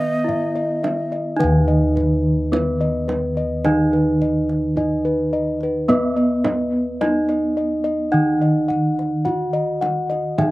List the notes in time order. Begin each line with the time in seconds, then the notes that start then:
Already playing: D#3 B3 D#5
0.01 kendang slap
0.24 E4
0.28 E5, kendang slap, kendang low
0.56 D#5
0.83 E5, kendang slap, kendang high
1.12 D#5, kendang slap
1.37 D#3 D#4 B4, kendang low
1.44 D#2
1.68 D#5, kendang slap
1.96 B4, kendang slap, kendang low
2.52 B3 E4 B4, kendang high
2.81 D#5, kendang slap
3.08 B4, kendang high
3.37 D#5
3.65 D#3 D#4 D#5, kendang high
3.93 B4, kendang slap
4.22 D#5, kendang low
4.49 kendang slap
4.76 D#4 E4 D#5, kendang slap, kendang low
5.05 B4
5.33 D#5
5.61 B4, kendang slap
5.89 B3 B4 D#5, kendang high, kendang low
6.17 D#5, kendang slap
6.44 D#5, kendang slap, kendang high, kendang low
7.01 D#4 E4 D#5, kendang high
7.29 D#5, kendang slap
7.57 D#5
7.84 D#5
8.12 D#3 D#4 F#5
8.41 D#5, kendang slap
8.68 F#5, kendang low
8.99 kendang slap
9.25 E4 F#4 F#5, kendang slap, kendang low
9.53 D#5
9.81 F#5, kendang high
10.10 D#5, kendang slap
10.38 D#3 D#4 E5, kendang low